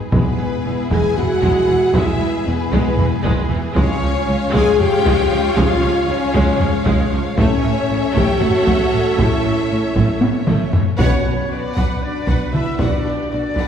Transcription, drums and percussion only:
0.12 taiko loud
0.91 taiko medium
1.17 taiko low medium
1.43 taiko medium
1.95 taiko loud
2.73 taiko medium
2.99 taiko low medium
3.25 taiko medium
3.77 taiko medium
4.54 taiko medium
4.80 taiko low medium
5.06 taiko medium
5.57 taiko loud
6.35 taiko medium
6.60 taiko low medium
6.86 taiko medium
7.38 taiko loud
8.15 taiko medium
8.41 taiko low medium
8.67 taiko medium
9.19 taiko medium
9.96 taiko medium
10.21 taiko high medium
10.47 taiko mid medium
10.73 taiko low loud
10.99 taiko medium
11.77 taiko medium
12.28 taiko medium
12.54 taiko mid medium
12.79 taiko medium
13.56 taiko medium

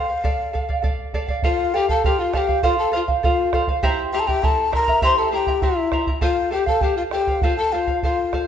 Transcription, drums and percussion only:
0.24 bombo low medium
0.55 bombo low medium
0.69 bombo low medium
0.84 bombo low medium
1.14 bombo low medium
1.28 bombo low medium
1.43 bombo low medium
1.89 bombo low medium
2.04 bombo low medium
2.34 bombo rim soft
2.34 bombo low medium
2.49 bombo low medium
2.63 bombo low medium
3.08 bombo low medium
3.24 bombo low medium
3.53 bombo rim medium
3.53 bombo low medium
3.67 bombo low medium
3.83 bombo low medium
4.28 bombo low medium
4.43 bombo low medium
4.73 bombo rim soft
4.73 bombo low medium
4.88 bombo low medium
5.02 bombo low medium
5.46 bombo low medium
5.62 bombo low medium
5.92 bombo rim soft
5.92 bombo low soft
6.07 bombo low medium
6.21 bombo low medium
6.67 bombo low medium
6.81 bombo low medium
7.11 bombo rim medium
7.27 bombo low medium
7.41 bombo low medium
7.87 bombo low medium
8.03 bombo low medium
8.33 bombo rim soft
8.33 bombo low soft

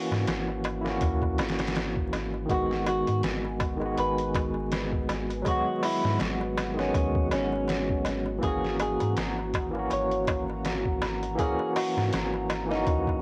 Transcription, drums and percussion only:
0.12 snare medium
0.12 darbuka tek soft
0.27 snare loud
0.27 closed hi-hat medium
0.27 darbuka tek soft
0.48 darbuka tek soft
0.64 closed hi-hat medium
0.64 darbuka tek medium
0.85 snare medium
0.85 darbuka tek soft
1.01 kick loud
1.01 closed hi-hat medium
1.01 darbuka tek soft
1.22 kick medium
1.22 darbuka tek soft
1.38 snare medium
1.38 closed hi-hat medium
1.38 darbuka tek medium
1.49 snare medium
1.49 closed hi-hat medium
1.59 snare medium
1.59 closed hi-hat medium
1.59 darbuka tek soft
1.67 snare medium
1.67 closed hi-hat medium
1.76 snare loud
1.76 closed hi-hat medium
1.76 darbuka tek soft
1.96 kick medium
2.13 snare soft
2.13 closed hi-hat medium
2.13 darbuka tek medium
2.34 darbuka tek soft
2.49 kick loud
2.49 closed hi-hat medium
2.49 darbuka tek soft
2.71 snare soft
2.87 closed hi-hat medium
2.87 darbuka tek medium
3.07 closed hi-hat soft
3.07 darbuka tek soft
3.23 snare loud
3.23 closed hi-hat medium
3.23 darbuka tek soft
3.45 darbuka tek soft
3.60 kick medium
3.60 closed hi-hat medium
3.60 darbuka tek medium
3.81 darbuka tek soft
3.98 closed hi-hat medium
3.98 darbuka tek medium
4.18 closed hi-hat soft
4.34 kick medium
4.34 closed hi-hat medium
4.34 darbuka tek medium
4.54 darbuka tek soft
4.72 snare loud
4.72 closed hi-hat medium
4.72 darbuka tek soft
4.92 kick medium
5.09 snare soft
5.09 closed hi-hat medium
5.09 darbuka tek medium
5.30 closed hi-hat soft
5.30 darbuka tek soft
5.45 kick medium
5.45 closed hi-hat medium
5.45 darbuka tek soft
5.83 open hi-hat medium
5.83 darbuka tek medium
6.04 snare medium
6.04 darbuka tek soft
6.19 snare loud
6.19 closed hi-hat medium
6.19 darbuka tek soft
6.41 darbuka tek soft
6.58 snare soft
6.58 closed hi-hat medium
6.58 darbuka tek medium
6.79 snare soft
6.79 darbuka tek soft
6.94 kick loud
6.94 closed hi-hat medium
6.94 darbuka tek medium
7.15 kick medium
7.31 snare medium
7.31 closed hi-hat medium
7.31 darbuka tek medium
7.53 darbuka tek soft
7.68 snare loud
7.68 closed hi-hat medium
7.68 darbuka tek soft
7.89 kick medium
8.05 snare soft
8.05 closed hi-hat medium
8.05 darbuka tek medium
8.26 darbuka tek soft
8.43 kick loud
8.43 closed hi-hat medium
8.43 darbuka tek soft
8.64 snare soft
8.79 closed hi-hat medium
8.79 darbuka tek medium
9.00 closed hi-hat soft
9.00 darbuka tek soft
9.17 snare loud
9.17 closed hi-hat medium
9.17 darbuka tek soft
9.38 darbuka tek soft
9.54 kick medium
9.54 closed hi-hat medium
9.54 darbuka tek loud
9.75 darbuka tek soft
9.90 closed hi-hat medium
9.90 darbuka tek medium
10.12 closed hi-hat soft
10.27 kick medium
10.27 closed hi-hat medium
10.27 darbuka tek loud
10.50 darbuka tek soft
10.65 snare loud
10.65 closed hi-hat medium
10.65 darbuka tek soft
10.85 kick medium
11.02 snare soft
11.02 closed hi-hat medium
11.02 darbuka tek medium
11.23 closed hi-hat soft
11.23 darbuka tek soft
11.39 kick medium
11.39 closed hi-hat medium
11.39 darbuka tek soft
11.59 darbuka tek soft
11.76 open hi-hat medium
11.76 darbuka tek medium
11.98 snare medium
11.98 darbuka tek soft
12.13 snare loud
12.13 closed hi-hat medium
12.13 darbuka tek medium
12.34 darbuka tek soft
12.50 snare soft
12.50 closed hi-hat medium
12.50 darbuka tek loud
12.71 snare soft
12.71 darbuka tek soft
12.86 kick loud
12.86 closed hi-hat medium
12.86 darbuka tek soft
13.07 kick medium
13.07 darbuka tek soft

